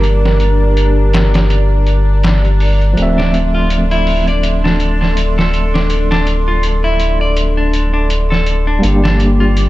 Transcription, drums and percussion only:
0.04 closed hi-hat
0.25 snare
0.40 closed hi-hat
0.77 closed hi-hat
1.13 snare, closed hi-hat
1.34 snare, closed hi-hat
1.50 closed hi-hat
1.87 closed hi-hat
2.23 snare, closed hi-hat
2.45 closed hi-hat
2.60 open hi-hat
2.81 closed hi-hat
2.97 closed hi-hat
3.20 snare
3.34 closed hi-hat
3.70 closed hi-hat
3.91 closed hi-hat
4.07 open hi-hat
4.27 closed hi-hat
4.43 closed hi-hat
4.65 snare
4.80 closed hi-hat
5.02 snare
5.17 closed hi-hat
5.39 snare
5.54 closed hi-hat
5.75 snare
5.90 closed hi-hat
6.12 snare
6.27 closed hi-hat
6.63 closed hi-hat
7.00 closed hi-hat
7.37 closed hi-hat
7.73 closed hi-hat
8.10 closed hi-hat
8.32 snare
8.46 closed hi-hat
8.83 closed hi-hat
9.05 snare
9.20 closed hi-hat
9.57 closed hi-hat

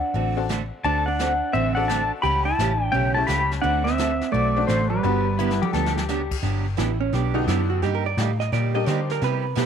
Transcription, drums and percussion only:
0.15 brush sweep
0.50 snare, hi-hat pedal
0.85 brush sweep
1.20 snare, hi-hat pedal
1.54 brush sweep
1.90 snare, hi-hat pedal
2.24 brush sweep
2.59 snare, hi-hat pedal
2.94 brush sweep
3.29 snare, hi-hat pedal
3.51 snare
3.64 brush sweep
3.87 snare
3.99 snare, hi-hat pedal
4.21 snare
4.34 brush sweep
4.69 snare, hi-hat pedal
5.04 brush sweep
5.39 hi-hat pedal
5.51 snare
5.62 high tom
5.74 snare
5.86 snare
5.97 snare
6.09 snare, hi-hat pedal
6.31 kick, crash
6.44 brush sweep, snare
6.79 snare, hi-hat pedal
7.14 brush sweep, snare
7.48 snare, hi-hat pedal
7.83 brush sweep, snare
8.18 snare, hi-hat pedal
8.41 snare
8.53 brush sweep, snare
8.88 snare, hi-hat pedal
9.10 snare
9.22 brush sweep, snare
9.57 snare, hi-hat pedal

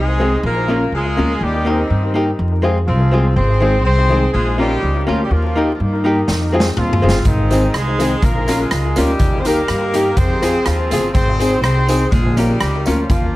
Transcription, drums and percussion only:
6.28 snare
6.60 snare
6.77 mid tom
6.93 floor tom
7.09 snare
7.25 kick, closed hi-hat
7.51 closed hi-hat, tambourine
7.74 cross-stick, closed hi-hat
8.00 closed hi-hat, tambourine
8.22 kick, closed hi-hat
8.48 cross-stick, closed hi-hat, tambourine
8.71 cross-stick, closed hi-hat
8.96 closed hi-hat, tambourine
9.19 kick, closed hi-hat
9.45 closed hi-hat, tambourine
9.68 cross-stick, closed hi-hat
9.94 closed hi-hat, tambourine
10.17 kick, closed hi-hat
10.42 cross-stick, closed hi-hat, tambourine
10.66 cross-stick, closed hi-hat
10.91 closed hi-hat, tambourine
11.15 kick, closed hi-hat
11.40 closed hi-hat, tambourine
11.64 cross-stick, closed hi-hat
11.89 closed hi-hat, tambourine
12.12 kick, closed hi-hat
12.37 closed hi-hat, tambourine
12.60 cross-stick, closed hi-hat
12.86 closed hi-hat, tambourine
13.10 kick, closed hi-hat

